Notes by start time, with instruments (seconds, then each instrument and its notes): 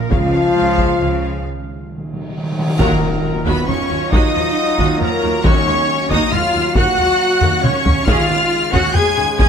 Already playing: french horn section A#3, violin section A#4, flute section A#4
0.10 double bass section C#2, cello section C#3, trombone section F3, french horn section F4, viola section G#4 C#5, flute section F5, trumpet section F5, violin section F5, taiko
0.33 viola section G#4 C#5, violin section F5
0.56 double bass section C#2, cello section C#3, viola section G#4 C#5, violin section F5
0.78 viola section G#4 C#5, violin section F5, taiko
1.00 double bass section C#2, cello section C#3, viola section G#4 C#5, violin section F5
1.22 viola section G#4 C#5, violin section F5
1.45 cymbal swell
1.54 timpani D#3
1.61 timpani D#3
1.68 timpani D#3
1.76 timpani D#3
1.83 timpani D#3
1.90 timpani D#3
1.98 timpani D#3
2.06 timpani D#3
2.13 timpani D#3
2.21 timpani D#3
2.29 timpani D#3
2.38 timpani D#3
2.43 timpani D#3
2.52 timpani D#3
2.59 timpani D#3
2.67 timpani D#3
2.78 double bass section D#2, timpani D#3, trombone section F#3 F4, viola section F#3 F#4, french horn section A#3, cello section A#3, violin section A#4 A#5, trumpet section A#4, flute section A#4, taiko, impact
3.01 double bass section D#2, viola section F3 D#4
3.44 double bass section D#2, viola section F#3 F#4, french horn section B3, cello section B3, trumpet section B4, violin section B4 B5, flute section B4, taiko
3.67 double bass section D#2, viola section F3 D#4, cello section C#4, french horn section C#4, violin section C#5 C#6, trumpet section C#5, flute section C#5, taiko low-mid
3.90 double bass section D#2, viola section F#3 F#4
4.11 double bass section D#2, viola section F#3 F#4, french horn section D#4, cello section D#4, violin section D#5 D#6, trumpet section D#5, flute section D#5, taiko
4.35 double bass section D#2, viola section F3 D#4
4.78 double bass section D#2, viola section F#3 F#4, taiko
5.00 double bass section D#2, viola section F3 D#4, french horn section A#3, cello section A#3, violin section A#4 A#5, trumpet section A#4, flute section A#4, taiko low-mid
5.22 double bass section D#2, viola section F#3 F#4
5.43 double bass section D#2, timpani D#3, trombone section F#3 A#3, viola section A#3 F#4, cello section C#4, french horn section C#4, trumpet section C#5, flute section C#5, violin section C#5 C#6, taiko
5.66 double bass section D#2, viola section G#3 F4, taiko rim
6.09 double bass section D#2, viola section A#3 F#4, french horn section D#4, cello section D#4, flute section D#5, trumpet section D#5, violin section D#5 D#6, taiko
6.31 double bass section D#2, viola section G#3 F4, french horn section F4, cello section F4, violin section F5 F6, flute section F5, trumpet section F5, taiko low-mid
6.54 double bass section D#2, viola section A#3 F#4
6.75 double bass section D#2, viola section A#3 F#4, cello section F#4, french horn section F#4, flute section F#5, violin section F#5 F#6, trumpet section F#5, taiko
6.98 double bass section D#2, viola section G#3 F4
7.42 double bass section D#2, viola section A#3 F#4, taiko low-mid
7.63 double bass section D#2, viola section G#3 F4, french horn section C#4, cello section C#4, flute section C#5, violin section C#5 C#6, trumpet section C#5, taiko mid
7.86 double bass section D#2, viola section A#3 F#4, taiko low
8.06 double bass section D#2, trombone section C#3 G#3, timpani D#3, viola section C#4 G#4, cello section F4, french horn section F4, flute section F5, violin section F5 F6, trumpet section F5, taiko
8.29 double bass section D#2, viola section B3 F#4
8.72 double bass section D#2, viola section C#4 G#4, cello section F#4, french horn section F#4, trumpet section F#5, flute section F#5, violin section F#5 F#6, taiko
8.94 double bass section D#2, viola section B3 F#4, cello section G#4, french horn section G#4, flute section G#5, trumpet section G#5, violin section G#5 G#6, taiko low-mid
9.16 double bass section D#2, viola section C#4 G#4
9.37 double bass section D#2, viola section C#4 G#4, cello section G#4, french horn section G#4, flute section G#5, trumpet section G#5, violin section G#5 G#6, taiko